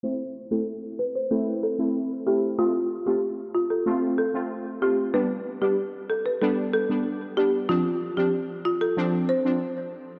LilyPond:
<<
  \new Staff \with { instrumentName = "Marimba" } { \time 4/4 \key a \minor \tempo 4 = 94 c''16 r8 a'16 r8 b'16 c''16 a'16 r16 a'16 r8. g'16 r16 | f'16 r8 g'16 r8 f'16 a'16 r8 a'16 r8. g'16 r16 | b'16 r8 g'16 r8 a'16 b'16 a'16 r16 a'16 r8. g'16 r16 | f'16 r8 g'16 r8 f'16 a'16 r8 c''16 r4 r16 | }
  \new Staff \with { instrumentName = "Synth stab" } { \time 4/4 \key a \minor <a c' e'>16 r8 <a c' e'>16 r4 <a c' e'>8. <a c' e'>8. <a c' e'>8 | <a c' f'>16 r8 <a c' f'>16 r4 <a c' f'>8. <a c' f'>8. <a c' f'>8 | <g b d'>16 r8 <g b d'>16 r4 <g b d'>8. <g b d'>8. <g b d'>8 | <f c' d'>16 r8 <f c' d'>16 r4 <f c' d'>8. <f c' d'>16 r4 | }
>>